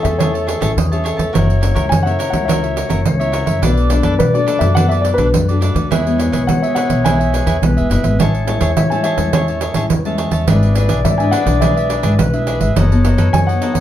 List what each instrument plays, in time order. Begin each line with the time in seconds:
Already playing: nylon-string guitar E3, cavaquinho G#4 C#5 E5 A5, clarinet A4
0.03 upright bass E2, nylon-string guitar C#4 E4 G#4, grand piano E5, pandeiro
0.18 nylon-string guitar A3 C#4 E4, cavaquinho G#4 C#5 E5 A5, grand piano C#5, pandeiro
0.34 cavaquinho C#5 E5 A5, pandeiro
0.47 cavaquinho G#4 C#5 E5 A5, pandeiro
0.60 upright bass A1, nylon-string guitar C#4 E4 G#4, cavaquinho G#4 C#5 E5 A5, pandeiro
0.77 upright bass E2, nylon-string guitar E3, clarinet G#4, pandeiro
0.92 nylon-string guitar C#4 E4 G#4, cavaquinho C#5 E5 A5, pandeiro
1.04 cavaquinho G#4 C#5 E5 A5, clarinet A4, pandeiro
1.17 upright bass E2, cavaquinho C#5 E5 A5, pandeiro
1.33 upright bass F#1, nylon-string guitar F#3 C#4 E4 A#4, cavaquinho F#4 A#4 C#5 E5, clarinet C#5, pandeiro
1.50 pandeiro
1.61 nylon-string guitar C#4 E4 A#4, cavaquinho F#4 A#4 C#5 E5, pandeiro
1.74 upright bass C#2, cavaquinho F#4 A#4 C#5 E5, pandeiro
1.89 upright bass F#2, nylon-string guitar C#3, grand piano G#5, pandeiro
2.03 nylon-string guitar C#4 E4 A#4, cavaquinho C#5 E5, grand piano F#5
2.07 cavaquinho A#4, pandeiro
2.19 cavaquinho F#4 A#4 C#5 E5, pandeiro
2.30 upright bass C#2, nylon-string guitar C#4 E4 A#4, grand piano F#5, pandeiro
2.45 nylon-string guitar F#3 C#4 E4, cavaquinho F#4 A#4 C#5, grand piano E5
2.49 nylon-string guitar A#4, cavaquinho E5, pandeiro
2.63 cavaquinho A#4 C#5 E5, pandeiro
2.76 cavaquinho F#4 A#4 C#5 E5, pandeiro
2.89 upright bass F#1, nylon-string guitar C#4 E4 A#4, cavaquinho F#4 A#4 C#5 E5, pandeiro
3.05 upright bass C#2, nylon-string guitar C#3, clarinet C#5, pandeiro
3.20 nylon-string guitar C#4 E4 A#4, cavaquinho A#4 C#5 E5, pandeiro
3.32 cavaquinho F#4 A#4 C#5 E5, pandeiro
3.46 upright bass F#2, cavaquinho A#4 C#5 E5, pandeiro
3.62 upright bass B1, nylon-string guitar B2 A3 D4 F#4, cavaquinho D4 A4 B4 D5, clarinet D5, pandeiro
3.77 pandeiro
3.90 nylon-string guitar A3 D4 F#4, cavaquinho D4 A4 B4 D5, pandeiro
4.03 upright bass F#2, cavaquinho D4 A4 B4 D5, pandeiro
4.19 upright bass B2, nylon-string guitar F#3, grand piano B4, pandeiro
4.34 nylon-string guitar A3 D4 F#4, cavaquinho A4 B4 D5, grand piano D5, pandeiro
4.46 cavaquinho D4 A4 B4 D5, pandeiro
4.59 upright bass F#2, nylon-string guitar A3 D4 F#4, grand piano E5, pandeiro
4.75 nylon-string guitar B2 A3 D4 F#4, cavaquinho D4 A4 B4 D5, grand piano F#5, pandeiro
4.89 cavaquinho B4 D5, grand piano E5, pandeiro
4.93 cavaquinho A4
5.01 cavaquinho D4 A4 B4, grand piano D5, pandeiro
5.05 cavaquinho D5
5.14 upright bass B1, cavaquinho D4, grand piano B4
5.18 nylon-string guitar A3 D4 F#4, cavaquinho A4 B4 D5, pandeiro
5.34 upright bass F#2, nylon-string guitar F#3, pandeiro
5.48 nylon-string guitar A3 D4 F#4, cavaquinho A4 B4 D5, pandeiro
5.61 cavaquinho D4 A4 B4 D5, pandeiro
5.75 upright bass D2, cavaquinho A4 B4 D5, pandeiro
5.91 upright bass E2, nylon-string guitar E3 G#3 B3 E4, cavaquinho E4 G#4 B4 E5, clarinet C#5, pandeiro
6.06 nylon-string guitar G#3 B3 E4, pandeiro
6.18 cavaquinho E4 G#4 B4 E5, pandeiro
6.32 upright bass B1, cavaquinho E4 G#4 B4 E5, pandeiro
6.47 nylon-string guitar B2 G#3 B3 E4, upright bass E3, grand piano F#5, pandeiro
6.62 cavaquinho G#4 B4 E5, grand piano E5, pandeiro
6.75 cavaquinho E4 G#4 B4 E5, grand piano F#5, pandeiro
6.90 upright bass B1, pandeiro
7.04 nylon-string guitar E3 G#3 B3 E4, cavaquinho E4 G#4 B4 E5, grand piano G#5, pandeiro
7.19 cavaquinho G#4 B4 E5, pandeiro
7.33 cavaquinho E4 G#4 B4 E5, pandeiro
7.46 upright bass E2, cavaquinho E4 G#4 B4 E5, pandeiro
7.62 upright bass B1, nylon-string guitar B2 G#3 B3 E4, clarinet B4, pandeiro
7.77 upright bass E1, cavaquinho G#4 B4 E5, pandeiro
7.90 upright bass F#1, nylon-string guitar G#3 B3 E4, cavaquinho E4 G#4 B4 E5, pandeiro
8.03 upright bass G#1, cavaquinho G#4 B4 E5, pandeiro
8.19 upright bass A1, nylon-string guitar A2 G#3 C#4 E4, cavaquinho G#4 C#5 E5 A5, clarinet C#5, pandeiro
8.35 pandeiro
8.47 nylon-string guitar G#3 C#4 E4, cavaquinho G#4 C#5 E5 A5, pandeiro
8.60 upright bass E2, cavaquinho G#4 C#5 E5 A5, pandeiro
8.76 upright bass A2, nylon-string guitar E3, grand piano E5, pandeiro
8.90 nylon-string guitar G#3 C#4 E4, cavaquinho C#5 E5 A5, grand piano G#5, pandeiro
9.03 cavaquinho G#4 C#5 E5 A5, grand piano E5, pandeiro
9.17 upright bass E2, nylon-string guitar G#3 C#4 E4, pandeiro
9.33 nylon-string guitar A2 G#3 C#4 E4, cavaquinho G#4 C#5 E5 A5, grand piano C#5, pandeiro
9.48 cavaquinho C#5 E5 A5, pandeiro
9.61 cavaquinho G#4 C#5 E5 A5, pandeiro
9.74 upright bass A1, nylon-string guitar G#3 C#4 E4, cavaquinho G#4 C#5 E5 A5, pandeiro
9.90 upright bass E2, nylon-string guitar E3, pandeiro
10.05 nylon-string guitar G#3 C#4 E4, cavaquinho C#5 E5 A5, pandeiro
10.18 cavaquinho G#4 C#5 E5 A5, pandeiro
10.31 upright bass E2, cavaquinho C#5 E5 A5, pandeiro
10.47 upright bass G#1, nylon-string guitar G#3 D4 E4 B4, cavaquinho D4 G#4 B4 E5, clarinet D5, pandeiro
10.63 pandeiro
10.75 nylon-string guitar D4 E4 B4, cavaquinho D4 G#4 B4 E5, pandeiro
10.88 upright bass B1, cavaquinho D4 G#4 B4 E5, pandeiro
11.04 upright bass G#2, nylon-string guitar G#3, grand piano D5 E5, pandeiro
11.10 grand piano E5
11.18 nylon-string guitar D4 E4 B4, cavaquinho G#4 B4 E5, grand piano G#5, pandeiro
11.31 cavaquinho D4 G#4 B4 E5, grand piano F#5, pandeiro
11.45 upright bass B1, nylon-string guitar D4 E4 B4, pandeiro
11.61 nylon-string guitar G#3 D4 E4 B4, cavaquinho D4 G#4 B4 E5, grand piano E5, pandeiro
11.76 cavaquinho G#4 B4 E5, pandeiro
11.89 cavaquinho D4 G#4 B4 E5, pandeiro
12.03 upright bass G#1, nylon-string guitar D4 E4 B4, cavaquinho D4 G#4 B4 E5, pandeiro
12.18 upright bass B1, nylon-string guitar G#3, clarinet B4, pandeiro
12.33 nylon-string guitar D4 E4 B4, cavaquinho G#4 B4 E5, pandeiro
12.47 cavaquinho D4 G#4 B4 E5, pandeiro
12.60 upright bass G#1, cavaquinho G#4 B4 E5, pandeiro
12.76 upright bass F#1, nylon-string guitar F#3 B3 D#4 A4, cavaquinho D#4 A4 B4 D#5, clarinet C#5, pandeiro
12.91 nylon-string guitar B3 D#4 A4, pandeiro
13.05 cavaquinho D#4 A4 B4 D#5, pandeiro
13.17 upright bass F#2, cavaquinho D#4 A4 B4 D#5, pandeiro
13.33 upright bass F#2, nylon-string guitar F#3 B3 D#4 A4, grand piano G#5, pandeiro
13.47 cavaquinho A4 B4 D#5, grand piano F#5, pandeiro
13.61 nylon-string guitar B3 D#4 A4, cavaquinho D#4 A4 B4 D#5, pandeiro
13.73 upright bass F#2, grand piano F#5, pandeiro